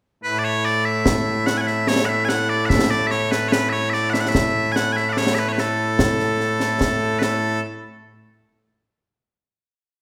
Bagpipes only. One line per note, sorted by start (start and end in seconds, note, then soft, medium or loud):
0.24 7.61 A2 medium
0.24 7.61 A3 medium
0.24 7.61 E4 medium
0.24 0.39 B4 medium
0.39 0.44 D5 medium
0.44 0.65 C#5 medium
0.65 0.85 D5 medium
0.85 1.46 E5 medium
1.46 1.58 F#5 medium
1.58 1.67 F#5 medium
1.58 1.61 G#5 medium
1.67 1.88 E5 medium
1.88 2.05 C#5 medium
2.05 2.25 E5 medium
2.05 2.09 F#5 medium
2.25 2.29 G#5 medium
2.29 2.49 F#5 medium
2.49 2.65 D5 medium
2.65 2.90 E5 medium
2.65 2.69 F#5 medium
2.90 3.07 D5 loud
3.07 3.11 E5 medium
3.11 3.31 C#5 medium
3.31 3.48 B4 medium
3.48 3.69 B4 medium
3.48 3.52 C#5 medium
3.69 3.90 C#5 medium
3.69 3.73 E5 medium
3.90 4.10 D5 medium
3.90 3.93 E5 medium
4.10 4.20 E5 medium
4.10 4.13 F#5 medium
4.20 4.28 F#5 medium
4.28 4.72 E5 medium
4.72 4.76 G#5 medium
4.76 4.93 F#5 medium
4.93 5.09 E5 medium
4.93 4.96 G#5 medium
5.09 5.18 D5 medium
5.09 5.12 F#5 medium
5.18 5.35 C#5 medium
5.35 5.39 E5 medium
5.39 5.48 B4 medium
5.48 5.59 B4 medium
5.48 5.52 C#5 medium
5.59 7.19 A4 medium
7.19 7.23 B4 medium
7.23 7.61 A4 medium